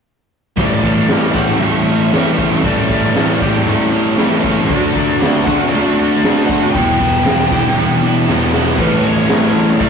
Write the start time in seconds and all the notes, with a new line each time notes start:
0.56 A2 E3 G3 A3 C#4 G4 D5, kick, open hi-hat
0.83 E3 G3 C#4 G4, kick, open hi-hat
1.08 A2 E3 G3 A3 C#4 G4, snare, open hi-hat
1.34 E3 A3 C#4 G4 F#5, kick, open hi-hat
1.38 G3
1.60 A2 E3 G3 A3 C#4 G4 E5, open hi-hat
1.86 G3 C#4 G4, open hi-hat
2.12 A2 E3 G3 A3 C#4, snare, open hi-hat
2.16 G4
2.38 G3 A3 C#4 G4, kick, open hi-hat
2.64 A2 E3 G3 A3 C#4 G4 D5, kick, open hi-hat
2.90 E3 G3 C#4 G4, kick, open hi-hat
3.15 A2 E3 G3 A3 C#4, snare, open hi-hat
3.19 G4
3.40 E3 A3 C#4 G4, kick, open hi-hat
3.44 G3
3.67 A2 E3 G3 A3 C#4 G4, open hi-hat
3.92 G3 C#4 G4, open hi-hat
4.17 A2 E3 G3 A3 C#4 G4, snare, open hi-hat
4.44 A3 C#4 G4, kick, open hi-hat
4.48 G3
4.69 D3 F#3 A3 D4 F#4 D5, kick, open hi-hat
4.95 F#3 A3 D4 F#4, kick, open hi-hat
5.21 D3 A3 D4 F#4, snare, open hi-hat
5.44 F#4 F#5, kick, open hi-hat
5.48 A3 D4
5.69 D3 D5, open hi-hat
5.74 A3 D4 F#4
5.98 A3 D4 F#4, open hi-hat
6.23 D3 F#3 A3 D4 F#4, snare, open hi-hat
6.46 F#4 F#5, kick, open hi-hat
6.51 A3 D4
6.72 E2 B2 E3 G3 G5, kick, open hi-hat
6.77 B3 E4
6.99 G3 B3 E4, kick, open hi-hat
7.25 E2 B2 E3 G3 B3 E4, snare, open hi-hat
7.50 B2 E3 G3 B3 E4 G4, kick, open hi-hat
7.76 E2 B2 E3 G3 B3 E4, open hi-hat
8.02 G3 B3 D4 E4, open hi-hat
8.27 E2 B2 E3 G3 B3, snare
8.32 E4
8.53 G3 B3 E4, snare
8.66 snare
8.78 A1 A2 E3 G3 A3 C#4 G4 B4, kick, crash
9.04 A1 E3 C#5
9.29 A1 A3, snare, open hi-hat
9.54 A1 E3
9.79 A1 A2 E3 G3 A3 C#4 G4 D5, kick, open hi-hat